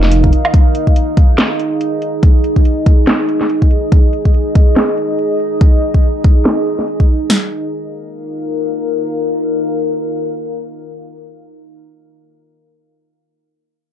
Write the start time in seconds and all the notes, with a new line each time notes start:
Already playing: F1 D#4 A#4 F5
0.03 snare
0.11 closed hi-hat
0.24 kick
0.33 closed hi-hat
0.45 low woodblock
0.54 G#4 D#5, kick, closed hi-hat
0.75 closed hi-hat
0.87 kick
0.96 closed hi-hat
1.17 kick, closed hi-hat
1.38 snare, closed hi-hat
1.60 closed hi-hat
1.81 closed hi-hat
2.02 closed hi-hat
2.23 kick, closed hi-hat
2.44 closed hi-hat
2.56 kick
2.65 closed hi-hat
2.86 kick, closed hi-hat
3.07 snare, closed hi-hat
3.29 closed hi-hat
3.41 snare
3.50 closed hi-hat
3.62 kick
3.71 closed hi-hat
3.92 kick, closed hi-hat
4.13 closed hi-hat
4.25 kick
4.34 closed hi-hat
4.55 kick, closed hi-hat
4.76 snare, closed hi-hat
4.97 closed hi-hat
5.19 closed hi-hat
5.40 closed hi-hat
5.61 kick
5.82 closed hi-hat
5.94 kick
6.03 closed hi-hat
6.24 kick
6.45 snare, closed hi-hat
6.67 closed hi-hat
6.79 snare
6.88 closed hi-hat
7.00 kick
7.09 closed hi-hat
7.30 D#4 A#4 F5, snare